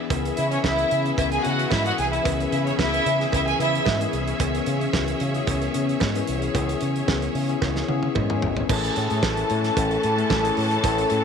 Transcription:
Already playing: E3 B3 D4 G#4 B4
0.10 C#2 E3 B3 C#4 G#4 B4 E5, kick, closed hi-hat, cowbell
0.25 closed hi-hat
0.37 C#3 E4 E5, closed hi-hat
0.50 C#4 C#5, closed hi-hat
0.63 C#2 E3 B3 C#4 E4 G#4 E5, kick, snare, cowbell
0.78 closed hi-hat
0.91 C#3, closed hi-hat
1.04 E3 B3 C#4 G#4, closed hi-hat
1.17 C#2 E4 E5, kick, closed hi-hat, cowbell
1.31 G#4 G#5, closed hi-hat
1.44 C#3 E3 B3 C#4 E4 F#4 F#5, closed hi-hat
1.59 closed hi-hat
1.71 G#2 E4 E5, kick, snare, cowbell
1.84 E3 B3 C#4 F#4 G#4 F#5, closed hi-hat
1.98 C2 G#4 G#5, closed hi-hat
2.12 E4 E5, closed hi-hat
2.23 C#2 E3 B3 C#4 G#4, kick, closed hi-hat, cowbell
2.40 closed hi-hat
2.52 C#3 E4 E5, closed hi-hat
2.67 C#4 C#5, closed hi-hat
2.78 C#2 E3 B3 C#4 E4 G#4 E5, kick, snare, cowbell
2.94 closed hi-hat
3.06 C#3, closed hi-hat
3.20 E3 B3 C#4 G#4, snare, closed hi-hat
3.32 C#2 E4 E5, kick, closed hi-hat, cowbell
3.48 G#4 G#5, closed hi-hat
3.59 C#3 E3 B3 C#4 E4 G#4 E5, closed hi-hat
3.75 closed hi-hat
3.85 G#2, kick, snare, cowbell
4.00 E3 B3 C#4 G#4, closed hi-hat
4.13 C2, closed hi-hat
4.27 closed hi-hat
4.40 C#2 E3 B3 C#4 G#4 C#5, kick, closed hi-hat, cowbell
4.55 closed hi-hat
4.66 C#3, closed hi-hat
4.81 closed hi-hat
4.93 C#2 E3 B3 C#4 F#4, kick, snare, cowbell
5.08 closed hi-hat
5.20 C#3, closed hi-hat
5.34 E3 B3 C#4 G#4, closed hi-hat
5.47 C#2, kick, closed hi-hat, cowbell
5.61 closed hi-hat
5.73 C#3 E3 B3 C#4 G#4, closed hi-hat
5.89 closed hi-hat
6.00 G#2, kick, snare, cowbell
6.14 E3 B3 C#4 B4, closed hi-hat
6.27 C2, closed hi-hat
6.42 closed hi-hat
6.53 C#2 E3 B3 C#4 G#4, kick, closed hi-hat, cowbell
6.69 closed hi-hat
6.81 C#3, closed hi-hat
6.96 closed hi-hat
7.06 C#2 E3 B3 C#4 G#4, kick, snare, cowbell
7.22 closed hi-hat
7.35 C#3, open hi-hat
7.48 E3 B3 C#4 G#4, closed hi-hat
7.62 C#2, kick, snare, cowbell
7.76 snare
7.88 C#3 E3 B3 C#4 G#4 B4, high tom
8.03 high tom
8.15 G#2 C#5, kick, mid tom, cowbell
8.30 E3 B3 C#4 G#4, mid tom
8.42 G#1 E5, floor tom
8.57 floor tom
8.69 A1 E3 A3 C#4 E4 G#4 A4 C#5 A5, kick, crash, cowbell
8.84 closed hi-hat
8.96 A2, closed hi-hat
9.09 A2 A3 C#4 E4 G#4 C#5, closed hi-hat
9.23 A1, kick, snare, cowbell
9.37 closed hi-hat
9.49 A2 A3 C#4 E4 A4 C#5, closed hi-hat
9.64 snare, closed hi-hat
9.77 A1, kick, closed hi-hat, cowbell
9.91 closed hi-hat
10.03 A2, closed hi-hat
10.17 A3 C#4 E4 G#4 C#5, closed hi-hat
10.30 A1, kick, snare, cowbell
10.43 A3 C#4 E4 G#4 C#5, closed hi-hat
10.57 A2, open hi-hat
10.71 closed hi-hat
10.83 A1 A3 C#4 E4 G#4 C#5, kick, closed hi-hat, cowbell
10.98 closed hi-hat
11.10 A2, closed hi-hat

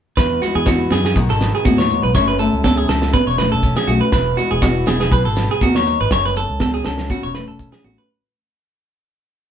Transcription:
0.17 E2 B4, kick, snare, muted conga, maracas
0.41 G#3 F#4, snare, muted conga, maracas
0.55 E2 G#4
0.66 E3 F#4, kick, snare, high conga, maracas
0.91 F#2 B3 G#4, snare, high conga, maracas
1.05 G#4, snare
1.16 B1 B2 D#3 B3 F#4, muted clean electric guitar stroke, muted nylon-string guitar stroke, kick, muted conga, maracas
1.30 G#1 A4, snare
1.41 B3, snare, maracas
1.55 G#4
1.65 D#2 A2 F#4, kick, snare, high conga, maracas
1.78 C#5, snare
1.90 G#2, muted conga, maracas
2.03 B1 B4
2.14 F#1 F#2 F#3 A3 C#4 C#5, kick, snare, muted conga, maracas
2.28 B4
2.39 A3 A4, muted conga, maracas
2.53 C#2
2.64 F#3 A4, kick, snare, high conga, maracas
2.77 G#4
2.89 C#2 C#4 A4, snare, maracas
3.02 snare
3.13 C#3 B4, kick, muted conga, high conga, maracas
3.27 E1 C#5
3.38 A3 B4, snare, low conga, maracas
3.52 E1 A4
3.63 C#4, kick, snare, maracas
3.77 G#4, snare
3.87 B1 A3 F#4, muted conga, maracas
4.01 B4
4.12 E1 E2 B4, kick, snare, muted conga, maracas
4.37 G#3 F#4, muted conga, maracas
4.51 E1 G#4
4.62 E3 F#4, kick, snare, high conga, maracas
4.87 E1 B3 G#4, snare, high conga, maracas
5.00 G#4, snare
5.11 B1 B2 B4, kick, muted conga, maracas
5.25 G#1 A4
5.36 B3, snare, maracas
5.51 G#4
5.61 D#2 D#3 F#4, kick, snare, high conga, maracas
5.75 C#5, snare
5.87 D#4, muted conga, maracas
6.01 G#1 B4
6.11 F#1 F#2 C#5, kick, snare, muted conga, maracas
6.26 B4
6.36 A4, muted nylon-string guitar stroke, muted conga, maracas
6.50 C#2
6.60 F#3 A4, kick, snare, high conga, maracas
6.74 G#4
6.85 C#2 C#4 A4, snare, maracas
6.98 snare
7.10 C#3 F#4, kick, muted conga, high conga, maracas
7.23 E1 C#5
7.35 A3 B4, snare, maracas
7.48 E1 A4
7.59 C#4, kick, maracas
7.72 G#4, snare
7.84 A1 A3 F#4, high conga
7.98 B4

